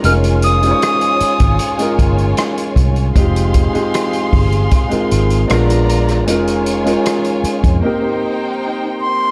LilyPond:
<<
  \new Staff \with { instrumentName = "Flute" } { \time 4/4 \key ees \mixolydian \tempo 4 = 77 f'''8 ees'''2 r4. | r1 | r2. r8 c'''8 | }
  \new Staff \with { instrumentName = "Violin section" } { \time 4/4 \key ees \mixolydian <f' des'' aes''>1 | <aes' f'' c'''>2. <f' d'' bes''>4 | <f' des'' aes''>2 <ees' c'' g''>2 | }
  \new Staff \with { instrumentName = "Grand piano" } { \time 4/4 \key ees \mixolydian <aes des' ees' f' bes'>8 r16 <aes des' ees' f' c'' des''>4~ <aes des' ees' f' c'' des''>16 r16 <aes des' ees' f' bes'>4. r16 | <aes c' ees' f' g'>8 r16 <aes c' ees' f' g'>4~ <aes c' ees' f' g'>16 r16 <aes c' ees' f' bes'>8. <aes ces' d' f' bes'>8. r16 | <aes des' ees' f' bes'>8 r16 <aes des' ees' f' bes'>4~ <aes des' ees' f' bes'>16 <bes c' ees' g' bes'>16 <bes c' ees' g' c''>4. r16 | }
  \new Staff \with { instrumentName = "Fingered electric bass" } { \clef bass \time 4/4 \key ees \mixolydian f,,4 r8. aes,,16 r8 g,,8 r8 c,8 | f,,8. r8. g,,8 r8 aes,,8 bes,,4 | f,,4 r8. f,16 r2 | }
  \new DrumStaff \with { instrumentName = "Drums" } \drummode { \time 4/4 hh16 hh16 hh16 hh16 <hh ss>16 hh16 hh16 <hh bd>16 hh16 hh16 <hh bd>16 hh16 <hh ss>16 hh16 <hh bd>16 hh16 | <hh bd>16 hh16 <hh bd>16 hh16 <hh ss>16 hh16 <hho bd>16 hh16 <hh bd>16 hh16 hh16 hh16 <hh ss>16 hh16 hh16 <hh ss>16 | hh16 hh16 hh16 hh16 <hh ss>16 hh16 hh16 <hh bd>16 r4 r4 | }
>>